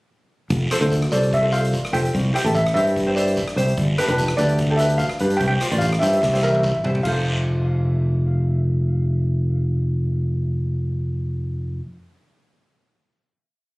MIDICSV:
0, 0, Header, 1, 5, 480
1, 0, Start_track
1, 0, Key_signature, -1, "major"
1, 0, Tempo, 409836
1, 587, Time_signature, 4, 2, 24, 8
1, 16136, End_track
2, 0, Start_track
2, 0, Title_t, "Steel pan"
2, 0, Program_c, 0, 114
2, 1310, Note_on_c, 0, 74, 73
2, 1530, Note_off_c, 0, 74, 0
2, 1567, Note_on_c, 0, 76, 86
2, 1778, Note_off_c, 0, 76, 0
2, 1784, Note_on_c, 0, 77, 78
2, 2264, Note_on_c, 0, 79, 96
2, 2276, Note_off_c, 0, 77, 0
2, 2743, Note_off_c, 0, 79, 0
2, 2757, Note_on_c, 0, 79, 81
2, 2861, Note_off_c, 0, 79, 0
2, 2983, Note_on_c, 0, 76, 86
2, 3090, Note_off_c, 0, 76, 0
2, 3211, Note_on_c, 0, 76, 88
2, 3695, Note_on_c, 0, 74, 64
2, 3708, Note_off_c, 0, 76, 0
2, 4142, Note_off_c, 0, 74, 0
2, 5118, Note_on_c, 0, 74, 83
2, 5580, Note_on_c, 0, 76, 81
2, 5622, Note_off_c, 0, 74, 0
2, 5832, Note_on_c, 0, 77, 91
2, 5845, Note_off_c, 0, 76, 0
2, 6287, Note_on_c, 0, 79, 93
2, 6339, Note_off_c, 0, 77, 0
2, 6401, Note_off_c, 0, 79, 0
2, 6415, Note_on_c, 0, 79, 99
2, 6775, Note_on_c, 0, 77, 88
2, 6805, Note_off_c, 0, 79, 0
2, 7016, Note_on_c, 0, 76, 74
2, 7044, Note_off_c, 0, 77, 0
2, 7097, Note_off_c, 0, 76, 0
2, 7112, Note_on_c, 0, 76, 52
2, 7175, Note_off_c, 0, 76, 0
2, 7189, Note_on_c, 0, 76, 60
2, 7266, Note_off_c, 0, 76, 0
2, 7280, Note_on_c, 0, 76, 46
2, 7370, Note_off_c, 0, 76, 0
2, 7384, Note_on_c, 0, 76, 51
2, 7447, Note_off_c, 0, 76, 0
2, 7461, Note_on_c, 0, 76, 47
2, 7527, Note_off_c, 0, 76, 0
2, 7541, Note_on_c, 0, 76, 50
2, 7629, Note_off_c, 0, 76, 0
2, 7643, Note_on_c, 0, 76, 45
2, 7708, Note_off_c, 0, 76, 0
2, 7722, Note_on_c, 0, 76, 55
2, 7806, Note_off_c, 0, 76, 0
2, 7820, Note_on_c, 0, 76, 53
2, 7919, Note_off_c, 0, 76, 0
2, 8237, Note_on_c, 0, 77, 76
2, 13807, Note_off_c, 0, 77, 0
2, 16136, End_track
3, 0, Start_track
3, 0, Title_t, "Ukulele"
3, 0, Program_c, 1, 24
3, 834, Note_on_c, 1, 65, 78
3, 834, Note_on_c, 1, 69, 67
3, 839, Note_on_c, 1, 72, 69
3, 904, Note_off_c, 1, 65, 0
3, 904, Note_off_c, 1, 72, 0
3, 905, Note_off_c, 1, 69, 0
3, 944, Note_on_c, 1, 69, 62
3, 948, Note_on_c, 1, 65, 61
3, 956, Note_on_c, 1, 72, 73
3, 1163, Note_off_c, 1, 65, 0
3, 1163, Note_off_c, 1, 72, 0
3, 1164, Note_off_c, 1, 69, 0
3, 1309, Note_on_c, 1, 69, 57
3, 1313, Note_on_c, 1, 65, 62
3, 1322, Note_on_c, 1, 72, 69
3, 1523, Note_off_c, 1, 65, 0
3, 1524, Note_off_c, 1, 69, 0
3, 1525, Note_off_c, 1, 72, 0
3, 1659, Note_on_c, 1, 69, 56
3, 1661, Note_on_c, 1, 65, 60
3, 1673, Note_on_c, 1, 72, 65
3, 1733, Note_off_c, 1, 65, 0
3, 1734, Note_off_c, 1, 69, 0
3, 1734, Note_off_c, 1, 72, 0
3, 1777, Note_on_c, 1, 65, 66
3, 1784, Note_on_c, 1, 72, 64
3, 1786, Note_on_c, 1, 69, 51
3, 2070, Note_off_c, 1, 65, 0
3, 2071, Note_off_c, 1, 69, 0
3, 2072, Note_off_c, 1, 72, 0
3, 2255, Note_on_c, 1, 69, 49
3, 2258, Note_on_c, 1, 65, 54
3, 2269, Note_on_c, 1, 72, 58
3, 2498, Note_off_c, 1, 65, 0
3, 2499, Note_off_c, 1, 69, 0
3, 2500, Note_off_c, 1, 72, 0
3, 2733, Note_on_c, 1, 64, 69
3, 2736, Note_on_c, 1, 67, 60
3, 2743, Note_on_c, 1, 72, 64
3, 2811, Note_off_c, 1, 64, 0
3, 2813, Note_off_c, 1, 72, 0
3, 2814, Note_off_c, 1, 67, 0
3, 2866, Note_on_c, 1, 69, 61
3, 2870, Note_on_c, 1, 64, 58
3, 2880, Note_on_c, 1, 67, 53
3, 3080, Note_off_c, 1, 64, 0
3, 3081, Note_off_c, 1, 67, 0
3, 3081, Note_off_c, 1, 69, 0
3, 3231, Note_on_c, 1, 64, 66
3, 3236, Note_on_c, 1, 72, 57
3, 3237, Note_on_c, 1, 67, 61
3, 3441, Note_off_c, 1, 72, 0
3, 3442, Note_off_c, 1, 64, 0
3, 3444, Note_off_c, 1, 67, 0
3, 3583, Note_on_c, 1, 64, 61
3, 3590, Note_on_c, 1, 67, 53
3, 3596, Note_on_c, 1, 72, 67
3, 3652, Note_off_c, 1, 64, 0
3, 3656, Note_off_c, 1, 67, 0
3, 3656, Note_off_c, 1, 72, 0
3, 3708, Note_on_c, 1, 72, 75
3, 3712, Note_on_c, 1, 64, 61
3, 3720, Note_on_c, 1, 67, 55
3, 3993, Note_off_c, 1, 64, 0
3, 3993, Note_off_c, 1, 72, 0
3, 3995, Note_off_c, 1, 67, 0
3, 4181, Note_on_c, 1, 72, 70
3, 4188, Note_on_c, 1, 64, 54
3, 4196, Note_on_c, 1, 67, 46
3, 4420, Note_off_c, 1, 72, 0
3, 4421, Note_off_c, 1, 64, 0
3, 4422, Note_off_c, 1, 67, 0
3, 4664, Note_on_c, 1, 71, 94
3, 4674, Note_on_c, 1, 62, 72
3, 4678, Note_on_c, 1, 67, 59
3, 4737, Note_off_c, 1, 71, 0
3, 4738, Note_off_c, 1, 62, 0
3, 4738, Note_off_c, 1, 67, 0
3, 4786, Note_on_c, 1, 71, 84
3, 4795, Note_on_c, 1, 62, 73
3, 4803, Note_on_c, 1, 67, 56
3, 5000, Note_off_c, 1, 71, 0
3, 5001, Note_off_c, 1, 62, 0
3, 5002, Note_off_c, 1, 67, 0
3, 5135, Note_on_c, 1, 71, 69
3, 5140, Note_on_c, 1, 62, 64
3, 5150, Note_on_c, 1, 67, 52
3, 5353, Note_off_c, 1, 62, 0
3, 5354, Note_off_c, 1, 67, 0
3, 5354, Note_off_c, 1, 71, 0
3, 5508, Note_on_c, 1, 67, 64
3, 5513, Note_on_c, 1, 62, 49
3, 5515, Note_on_c, 1, 69, 71
3, 5574, Note_off_c, 1, 62, 0
3, 5575, Note_off_c, 1, 67, 0
3, 5577, Note_off_c, 1, 69, 0
3, 5623, Note_on_c, 1, 71, 69
3, 5630, Note_on_c, 1, 62, 65
3, 5635, Note_on_c, 1, 67, 55
3, 5911, Note_off_c, 1, 62, 0
3, 5911, Note_off_c, 1, 67, 0
3, 5911, Note_off_c, 1, 71, 0
3, 6097, Note_on_c, 1, 71, 70
3, 6101, Note_on_c, 1, 62, 58
3, 6107, Note_on_c, 1, 67, 42
3, 6337, Note_off_c, 1, 62, 0
3, 6337, Note_off_c, 1, 67, 0
3, 6339, Note_off_c, 1, 71, 0
3, 6568, Note_on_c, 1, 67, 62
3, 6572, Note_on_c, 1, 65, 65
3, 6577, Note_on_c, 1, 72, 68
3, 6648, Note_off_c, 1, 65, 0
3, 6648, Note_off_c, 1, 67, 0
3, 6648, Note_off_c, 1, 72, 0
3, 6693, Note_on_c, 1, 74, 65
3, 6697, Note_on_c, 1, 65, 62
3, 6704, Note_on_c, 1, 67, 50
3, 6913, Note_off_c, 1, 65, 0
3, 6913, Note_off_c, 1, 67, 0
3, 6914, Note_off_c, 1, 74, 0
3, 7042, Note_on_c, 1, 67, 57
3, 7046, Note_on_c, 1, 65, 59
3, 7059, Note_on_c, 1, 72, 59
3, 7268, Note_off_c, 1, 65, 0
3, 7269, Note_off_c, 1, 67, 0
3, 7270, Note_off_c, 1, 72, 0
3, 7414, Note_on_c, 1, 67, 63
3, 7417, Note_on_c, 1, 64, 58
3, 7418, Note_on_c, 1, 72, 68
3, 7487, Note_off_c, 1, 64, 0
3, 7488, Note_off_c, 1, 67, 0
3, 7490, Note_off_c, 1, 72, 0
3, 7528, Note_on_c, 1, 70, 73
3, 7530, Note_on_c, 1, 64, 59
3, 7536, Note_on_c, 1, 67, 54
3, 7824, Note_off_c, 1, 64, 0
3, 7824, Note_off_c, 1, 67, 0
3, 7825, Note_off_c, 1, 70, 0
3, 8022, Note_on_c, 1, 72, 65
3, 8029, Note_on_c, 1, 64, 51
3, 8032, Note_on_c, 1, 67, 48
3, 8236, Note_off_c, 1, 64, 0
3, 8241, Note_on_c, 1, 65, 68
3, 8260, Note_off_c, 1, 72, 0
3, 8262, Note_off_c, 1, 67, 0
3, 8265, Note_on_c, 1, 69, 62
3, 8292, Note_on_c, 1, 72, 80
3, 13809, Note_off_c, 1, 65, 0
3, 13821, Note_off_c, 1, 69, 0
3, 13834, Note_off_c, 1, 72, 0
3, 16136, End_track
4, 0, Start_track
4, 0, Title_t, "Fingered electric bass"
4, 0, Program_c, 2, 33
4, 588, Note_on_c, 2, 29, 73
4, 773, Note_off_c, 2, 29, 0
4, 948, Note_on_c, 2, 38, 78
4, 1224, Note_off_c, 2, 38, 0
4, 1307, Note_on_c, 2, 36, 69
4, 2049, Note_off_c, 2, 36, 0
4, 2257, Note_on_c, 2, 29, 67
4, 2445, Note_off_c, 2, 29, 0
4, 2514, Note_on_c, 2, 36, 79
4, 2695, Note_off_c, 2, 36, 0
4, 2863, Note_on_c, 2, 33, 82
4, 3139, Note_off_c, 2, 33, 0
4, 3216, Note_on_c, 2, 43, 73
4, 3961, Note_off_c, 2, 43, 0
4, 4173, Note_on_c, 2, 36, 69
4, 4360, Note_off_c, 2, 36, 0
4, 4422, Note_on_c, 2, 31, 81
4, 4606, Note_off_c, 2, 31, 0
4, 4780, Note_on_c, 2, 29, 85
4, 5056, Note_off_c, 2, 29, 0
4, 5128, Note_on_c, 2, 38, 74
4, 5877, Note_off_c, 2, 38, 0
4, 6096, Note_on_c, 2, 43, 68
4, 6283, Note_off_c, 2, 43, 0
4, 6333, Note_on_c, 2, 36, 81
4, 6521, Note_off_c, 2, 36, 0
4, 6695, Note_on_c, 2, 33, 82
4, 6974, Note_off_c, 2, 33, 0
4, 7048, Note_on_c, 2, 43, 69
4, 7238, Note_off_c, 2, 43, 0
4, 7294, Note_on_c, 2, 36, 89
4, 7856, Note_off_c, 2, 36, 0
4, 8011, Note_on_c, 2, 36, 68
4, 8201, Note_off_c, 2, 36, 0
4, 8257, Note_on_c, 2, 29, 84
4, 13817, Note_off_c, 2, 29, 0
4, 16136, End_track
5, 0, Start_track
5, 0, Title_t, "Drums"
5, 588, Note_on_c, 9, 74, 59
5, 590, Note_on_c, 9, 42, 53
5, 591, Note_on_c, 9, 36, 91
5, 705, Note_off_c, 9, 74, 0
5, 707, Note_off_c, 9, 42, 0
5, 708, Note_off_c, 9, 36, 0
5, 832, Note_on_c, 9, 37, 82
5, 832, Note_on_c, 9, 42, 69
5, 949, Note_off_c, 9, 37, 0
5, 949, Note_off_c, 9, 42, 0
5, 960, Note_on_c, 9, 42, 52
5, 1059, Note_on_c, 9, 73, 59
5, 1075, Note_on_c, 9, 36, 70
5, 1078, Note_off_c, 9, 42, 0
5, 1082, Note_on_c, 9, 42, 58
5, 1177, Note_off_c, 9, 73, 0
5, 1192, Note_off_c, 9, 36, 0
5, 1199, Note_off_c, 9, 42, 0
5, 1200, Note_on_c, 9, 37, 80
5, 1300, Note_on_c, 9, 73, 59
5, 1314, Note_on_c, 9, 42, 72
5, 1317, Note_off_c, 9, 37, 0
5, 1417, Note_off_c, 9, 73, 0
5, 1431, Note_off_c, 9, 42, 0
5, 1442, Note_on_c, 9, 42, 56
5, 1538, Note_on_c, 9, 74, 65
5, 1555, Note_on_c, 9, 36, 86
5, 1559, Note_off_c, 9, 42, 0
5, 1560, Note_on_c, 9, 42, 55
5, 1655, Note_off_c, 9, 74, 0
5, 1672, Note_off_c, 9, 36, 0
5, 1677, Note_off_c, 9, 42, 0
5, 1779, Note_on_c, 9, 73, 63
5, 1802, Note_on_c, 9, 42, 71
5, 1896, Note_off_c, 9, 73, 0
5, 1919, Note_off_c, 9, 42, 0
5, 1927, Note_on_c, 9, 42, 60
5, 2017, Note_on_c, 9, 73, 62
5, 2034, Note_on_c, 9, 36, 74
5, 2040, Note_off_c, 9, 42, 0
5, 2040, Note_on_c, 9, 42, 57
5, 2135, Note_off_c, 9, 73, 0
5, 2151, Note_off_c, 9, 36, 0
5, 2157, Note_off_c, 9, 42, 0
5, 2164, Note_on_c, 9, 37, 73
5, 2274, Note_on_c, 9, 42, 76
5, 2281, Note_off_c, 9, 37, 0
5, 2391, Note_off_c, 9, 42, 0
5, 2401, Note_on_c, 9, 42, 54
5, 2501, Note_on_c, 9, 74, 57
5, 2515, Note_on_c, 9, 36, 99
5, 2518, Note_off_c, 9, 42, 0
5, 2523, Note_on_c, 9, 42, 54
5, 2618, Note_off_c, 9, 74, 0
5, 2632, Note_off_c, 9, 36, 0
5, 2640, Note_off_c, 9, 42, 0
5, 2761, Note_on_c, 9, 37, 75
5, 2761, Note_on_c, 9, 42, 71
5, 2878, Note_off_c, 9, 37, 0
5, 2878, Note_off_c, 9, 42, 0
5, 2883, Note_on_c, 9, 42, 55
5, 2982, Note_on_c, 9, 73, 58
5, 2992, Note_on_c, 9, 36, 80
5, 3000, Note_off_c, 9, 42, 0
5, 3000, Note_on_c, 9, 42, 52
5, 3099, Note_off_c, 9, 73, 0
5, 3109, Note_off_c, 9, 36, 0
5, 3117, Note_off_c, 9, 42, 0
5, 3122, Note_on_c, 9, 37, 81
5, 3236, Note_on_c, 9, 42, 68
5, 3239, Note_off_c, 9, 37, 0
5, 3353, Note_off_c, 9, 42, 0
5, 3362, Note_on_c, 9, 42, 50
5, 3465, Note_on_c, 9, 74, 62
5, 3472, Note_on_c, 9, 36, 89
5, 3480, Note_off_c, 9, 42, 0
5, 3481, Note_on_c, 9, 42, 53
5, 3582, Note_off_c, 9, 74, 0
5, 3589, Note_off_c, 9, 36, 0
5, 3598, Note_off_c, 9, 42, 0
5, 3701, Note_on_c, 9, 73, 68
5, 3716, Note_on_c, 9, 42, 69
5, 3818, Note_off_c, 9, 73, 0
5, 3833, Note_off_c, 9, 42, 0
5, 3833, Note_on_c, 9, 42, 55
5, 3936, Note_on_c, 9, 73, 63
5, 3946, Note_on_c, 9, 36, 77
5, 3949, Note_off_c, 9, 42, 0
5, 3949, Note_on_c, 9, 42, 54
5, 4053, Note_off_c, 9, 73, 0
5, 4063, Note_off_c, 9, 36, 0
5, 4066, Note_off_c, 9, 42, 0
5, 4071, Note_on_c, 9, 37, 71
5, 4188, Note_off_c, 9, 37, 0
5, 4190, Note_on_c, 9, 42, 69
5, 4307, Note_off_c, 9, 42, 0
5, 4311, Note_on_c, 9, 42, 51
5, 4416, Note_on_c, 9, 74, 58
5, 4422, Note_off_c, 9, 42, 0
5, 4422, Note_on_c, 9, 36, 103
5, 4422, Note_on_c, 9, 42, 51
5, 4533, Note_off_c, 9, 74, 0
5, 4539, Note_off_c, 9, 36, 0
5, 4539, Note_off_c, 9, 42, 0
5, 4665, Note_on_c, 9, 37, 75
5, 4665, Note_on_c, 9, 42, 80
5, 4782, Note_off_c, 9, 37, 0
5, 4782, Note_off_c, 9, 42, 0
5, 4782, Note_on_c, 9, 42, 55
5, 4897, Note_on_c, 9, 73, 68
5, 4900, Note_off_c, 9, 42, 0
5, 4900, Note_on_c, 9, 36, 77
5, 4901, Note_on_c, 9, 42, 59
5, 5014, Note_off_c, 9, 73, 0
5, 5017, Note_off_c, 9, 36, 0
5, 5017, Note_on_c, 9, 37, 81
5, 5018, Note_off_c, 9, 42, 0
5, 5132, Note_on_c, 9, 42, 69
5, 5134, Note_off_c, 9, 37, 0
5, 5139, Note_on_c, 9, 73, 66
5, 5249, Note_off_c, 9, 42, 0
5, 5256, Note_off_c, 9, 73, 0
5, 5256, Note_on_c, 9, 42, 54
5, 5368, Note_off_c, 9, 42, 0
5, 5368, Note_on_c, 9, 42, 55
5, 5374, Note_on_c, 9, 36, 93
5, 5379, Note_on_c, 9, 74, 64
5, 5485, Note_off_c, 9, 42, 0
5, 5491, Note_off_c, 9, 36, 0
5, 5497, Note_off_c, 9, 74, 0
5, 5606, Note_on_c, 9, 42, 80
5, 5619, Note_on_c, 9, 73, 64
5, 5723, Note_off_c, 9, 42, 0
5, 5731, Note_on_c, 9, 42, 62
5, 5736, Note_off_c, 9, 73, 0
5, 5844, Note_off_c, 9, 42, 0
5, 5844, Note_on_c, 9, 42, 60
5, 5852, Note_on_c, 9, 73, 65
5, 5853, Note_on_c, 9, 36, 76
5, 5962, Note_off_c, 9, 42, 0
5, 5967, Note_on_c, 9, 37, 71
5, 5969, Note_off_c, 9, 73, 0
5, 5970, Note_off_c, 9, 36, 0
5, 6081, Note_on_c, 9, 42, 77
5, 6084, Note_off_c, 9, 37, 0
5, 6198, Note_off_c, 9, 42, 0
5, 6209, Note_on_c, 9, 42, 58
5, 6323, Note_on_c, 9, 74, 60
5, 6327, Note_off_c, 9, 42, 0
5, 6328, Note_on_c, 9, 42, 56
5, 6332, Note_on_c, 9, 36, 97
5, 6440, Note_off_c, 9, 74, 0
5, 6445, Note_off_c, 9, 42, 0
5, 6449, Note_off_c, 9, 36, 0
5, 6568, Note_on_c, 9, 37, 78
5, 6568, Note_on_c, 9, 42, 76
5, 6685, Note_off_c, 9, 37, 0
5, 6685, Note_off_c, 9, 42, 0
5, 6696, Note_on_c, 9, 42, 57
5, 6804, Note_on_c, 9, 73, 66
5, 6807, Note_off_c, 9, 42, 0
5, 6807, Note_on_c, 9, 42, 57
5, 6814, Note_on_c, 9, 36, 76
5, 6921, Note_off_c, 9, 73, 0
5, 6924, Note_off_c, 9, 42, 0
5, 6932, Note_off_c, 9, 36, 0
5, 6940, Note_on_c, 9, 37, 77
5, 7045, Note_on_c, 9, 73, 64
5, 7057, Note_off_c, 9, 37, 0
5, 7057, Note_on_c, 9, 42, 66
5, 7162, Note_off_c, 9, 73, 0
5, 7174, Note_off_c, 9, 42, 0
5, 7178, Note_on_c, 9, 42, 52
5, 7283, Note_on_c, 9, 74, 66
5, 7291, Note_on_c, 9, 38, 48
5, 7295, Note_off_c, 9, 42, 0
5, 7298, Note_on_c, 9, 36, 90
5, 7400, Note_off_c, 9, 74, 0
5, 7408, Note_off_c, 9, 38, 0
5, 7415, Note_off_c, 9, 36, 0
5, 7426, Note_on_c, 9, 38, 51
5, 7534, Note_on_c, 9, 73, 68
5, 7539, Note_on_c, 9, 48, 63
5, 7543, Note_off_c, 9, 38, 0
5, 7651, Note_off_c, 9, 73, 0
5, 7656, Note_off_c, 9, 48, 0
5, 7667, Note_on_c, 9, 48, 60
5, 7770, Note_on_c, 9, 73, 70
5, 7774, Note_on_c, 9, 47, 72
5, 7779, Note_on_c, 9, 36, 77
5, 7784, Note_off_c, 9, 48, 0
5, 7887, Note_off_c, 9, 73, 0
5, 7891, Note_off_c, 9, 47, 0
5, 7896, Note_off_c, 9, 36, 0
5, 7900, Note_on_c, 9, 45, 66
5, 8016, Note_on_c, 9, 43, 76
5, 8017, Note_off_c, 9, 45, 0
5, 8133, Note_off_c, 9, 43, 0
5, 8139, Note_on_c, 9, 43, 71
5, 8256, Note_off_c, 9, 43, 0
5, 8257, Note_on_c, 9, 49, 73
5, 8260, Note_on_c, 9, 36, 86
5, 8260, Note_on_c, 9, 74, 70
5, 8374, Note_off_c, 9, 49, 0
5, 8377, Note_off_c, 9, 36, 0
5, 8377, Note_off_c, 9, 74, 0
5, 16136, End_track
0, 0, End_of_file